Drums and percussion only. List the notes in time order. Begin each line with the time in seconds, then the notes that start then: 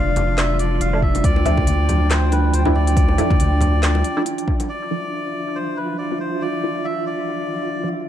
0.16 closed hi-hat, low conga
0.38 snare, clap, closed hi-hat
0.59 closed hi-hat
0.81 closed hi-hat
1.02 kick
1.15 closed hi-hat, high bongo
1.24 kick, closed hi-hat
1.36 high bongo
1.45 closed hi-hat, low conga
1.57 kick, high bongo
1.67 closed hi-hat, high conga
1.89 closed hi-hat, low conga
2.11 snare, clap, closed hi-hat
2.32 closed hi-hat, high bongo
2.54 closed hi-hat
2.65 low conga
2.76 high bongo
2.87 closed hi-hat
2.97 kick, closed hi-hat
3.09 high bongo
3.18 closed hi-hat, low conga
3.30 kick, high bongo, high conga
3.40 closed hi-hat, high conga
3.61 closed hi-hat, low conga
3.83 snare, clap, closed hi-hat
3.95 high bongo
4.04 closed hi-hat
4.26 closed hi-hat
4.38 closed hi-hat
4.48 kick
4.60 closed hi-hat, high bongo